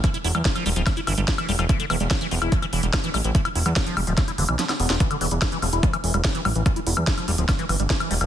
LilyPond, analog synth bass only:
\new Staff \with { instrumentName = "Analog synth bass" } { \clef bass \time 4/4 \key e \phrygian \tempo 4 = 145 r8 e,,16 e,16 r8 e,,16 d,,16 r8 g,,16 g,,16 r8 e,,16 e,,16 | r8 e,,16 e,,16 r8 e,,16 e,,16 r8 e,,16 e,,16 r8 a,,16 a,,16 | r8 e,,16 e,16 r8 e,,16 d,,16 r8 e,,16 b,,16 r8 e,,16 r16 | r8 e,,16 e,,16 r8 e,,16 e,,16 r8 e,,16 e,,16 r8 a,,16 a,,16 |
r8 e,,16 e,16 r8 e,,16 d,,16 r8 g,,16 g,,16 r8 e,,16 e,,16 | }